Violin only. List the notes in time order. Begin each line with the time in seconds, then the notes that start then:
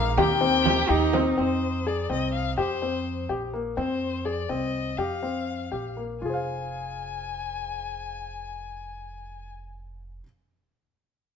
Already playing: F5
0.20 G5
1.41 C5
1.87 D5
2.12 D#5
2.34 F5
2.59 C5
3.78 C5
4.25 D5
4.49 D#5
4.98 F5
6.23 G#5